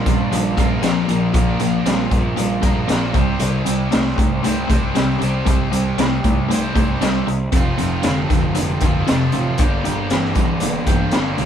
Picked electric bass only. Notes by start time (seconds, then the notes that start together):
0.06 A#1
0.32 A#1
0.58 A#1
0.82 A#1
1.08 A#1
1.34 A#1
1.60 A#1
1.85 A#1
2.11 A#1
2.39 A#1
2.63 A#1
2.91 A#1
3.14 C2
3.41 C2
3.68 C2
3.93 C2
4.18 C2
4.44 C2
4.70 C2
4.95 C2
5.22 C2
5.47 C2
5.71 C2
5.97 C2
6.25 C2
6.49 C2
6.75 C2
7.02 C2
7.27 C2
7.52 F1
7.79 F1
8.04 F1
8.31 F1
8.56 F1
8.82 F1
9.09 F1
9.33 A1
9.60 G1
9.86 G1
10.11 G1
10.36 G1
10.61 G1
10.87 G1
11.13 G1
11.38 C2